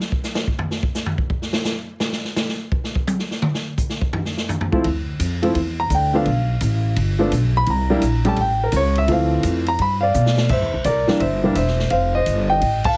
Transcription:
0.00 snare
0.12 kick
0.24 snare, hi-hat pedal
0.35 snare
0.47 kick
0.59 floor tom
0.71 snare
0.83 kick
0.95 snare, hi-hat pedal
1.06 floor tom
1.18 kick
1.30 kick
1.42 snare
1.53 snare
1.65 snare, hi-hat pedal
2.00 snare
2.12 snare
2.25 snare
2.36 snare, hi-hat pedal
2.49 snare
2.72 kick
2.84 snare
2.95 kick
3.07 hi-hat pedal, high tom
3.19 snare
3.31 snare
3.42 mid tom
3.54 snare
3.77 kick, hi-hat pedal
3.89 snare
4.01 kick
4.13 floor tom
4.25 snare
4.37 snare
4.49 floor tom, hi-hat pedal
4.61 floor tom
4.72 grand piano F3 A3 C4 E4, kick
4.84 upright bass D2, kick, ride
5.19 upright bass F2, kick, hi-hat pedal, ride
5.42 grand piano F3 A3 C4 E4, ride
5.55 upright bass E2, kick, ride
5.80 grand piano A#5
5.90 upright bass D2, kick, hi-hat pedal, ride
5.95 grand piano G5
6.13 grand piano F3 A3 B3 D4 F5
6.25 upright bass B1, kick, ride
6.61 upright bass A1, kick, hi-hat pedal, ride
6.96 upright bass G1, kick, ride
7.19 grand piano F3 A3 B3 D4
7.32 upright bass B1, kick, hi-hat pedal, ride
7.57 grand piano B5
7.66 upright bass C2, grand piano A#5, kick, ride
7.90 grand piano G3 A#3 D4 E4
8.02 upright bass A#1, kick, hi-hat pedal, ride
8.25 grand piano G3 A3 C#4 G4 A5, ride
8.36 upright bass A1, kick, ride
8.41 grand piano G5
8.64 grand piano A#4
8.72 upright bass C#2, kick, hi-hat pedal, ride
8.76 grand piano C#5
8.95 grand piano E5, ride
9.08 upright bass D2, grand piano E3 F3 A3 C4 F5, kick, ride
9.43 upright bass F2, kick, hi-hat pedal, ride
9.66 grand piano A#5, ride
9.79 upright bass G2, grand piano B5, kick, ride
10.01 grand piano D5 F5
10.14 upright bass B2, hi-hat pedal
10.26 snare
10.37 snare
10.49 upright bass G2, grand piano C5 E5, kick, crash
10.62 upright bass E2
10.74 upright bass C2
10.84 upright bass C2, grand piano A#4 D5, kick, hi-hat pedal, ride
11.07 grand piano E3 G3 A#3 D4, muted upright bass stroke, snare
11.20 upright bass G1, grand piano C5 E5, kick, ride
11.43 grand piano E3 G3 A#3 D4
11.55 upright bass E1, grand piano C5 E5, kick, hi-hat pedal, ride
11.67 snare
11.79 snare
11.90 upright bass F1, grand piano C5 F5, kick, ride
12.15 grand piano C5 D#5
12.26 upright bass G1, kick, hi-hat pedal, ride
12.50 grand piano D#5 G5
12.61 upright bass A1, kick, ride
12.84 grand piano F5 A5, kick, crash

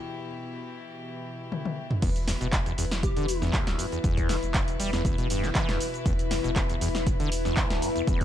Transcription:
Already playing: string section B2 E3 E4 G4
1.52 high tom
1.65 high tom
1.91 mid tom
2.02 sub bass E1, acid bass E2, string section B2 E3 E4 B4, ambient pad E4, kick, closed hi-hat, crash, cabasa
2.16 ambient pad B4, closed hi-hat, cabasa
2.27 acid bass E2, snare, open hi-hat, cabasa
2.41 sub bass E1, acid bass B2, closed hi-hat, cabasa
2.53 kick, clap, closed hi-hat, cabasa
2.66 acid bass E2, ambient pad E5, closed hi-hat, cabasa
2.78 sub bass E1, acid bass E2, open hi-hat, cabasa
2.91 ambient pad B5, snare, cabasa
3.03 digital synth lead G4, kick, closed hi-hat, cabasa
3.17 sub bass E1, acid bass D3, closed hi-hat, cabasa
3.28 open hi-hat, cabasa
3.42 acid bass E2, snare, cabasa
3.53 acid bass D2, kick, clap, closed hi-hat, cabasa
3.67 sub bass D1, snare, closed hi-hat, cabasa
3.79 acid bass G2, open hi-hat, cabasa
3.92 acid bass E2, closed hi-hat, cabasa
4.04 sub bass E1, acid bass E2, kick, closed hi-hat, cabasa
4.17 kick, closed hi-hat, cabasa
4.29 acid bass E3, snare, open hi-hat, cabasa
4.43 sub bass E1, closed hi-hat, cabasa
4.54 kick, clap, closed hi-hat, cabasa
4.68 closed hi-hat, cabasa
4.80 sub bass E1, acid bass G3, open hi-hat, cabasa
4.93 acid bass E2, snare, cabasa
5.05 acid bass E2, kick, closed hi-hat, cabasa
5.18 sub bass E1, acid bass B2, closed hi-hat, cabasa
5.30 acid bass G2, open hi-hat, cabasa
5.43 acid bass E3, snare, cabasa
5.55 acid bass E3, kick, clap, closed hi-hat, cabasa
5.69 sub bass D1, acid bass E2, snare, closed hi-hat, cabasa
5.80 open hi-hat, cabasa
5.94 closed hi-hat, cabasa
6.06 sub bass E1, acid bass E2, kick, closed hi-hat, cabasa
6.19 closed hi-hat, cabasa
6.31 acid bass E2, snare, open hi-hat, cabasa
6.44 sub bass E1, acid bass B2, closed hi-hat, cabasa
6.56 kick, clap, closed hi-hat, cabasa
6.70 acid bass E2, closed hi-hat, cabasa
6.81 sub bass E1, acid bass E2, open hi-hat, cabasa
6.95 snare, cabasa
7.07 kick, closed hi-hat, cabasa
7.20 sub bass E1, acid bass D3, closed hi-hat, cabasa
7.32 open hi-hat, cabasa
7.45 acid bass E2, snare, cabasa
7.57 acid bass D2, kick, clap, closed hi-hat, cabasa
7.70 sub bass D1, snare, closed hi-hat, cabasa
7.82 acid bass G2, open hi-hat, cabasa
7.96 acid bass E2, closed hi-hat, cabasa
8.07 sub bass E1, acid bass E2, kick, closed hi-hat, cabasa
8.21 kick, closed hi-hat

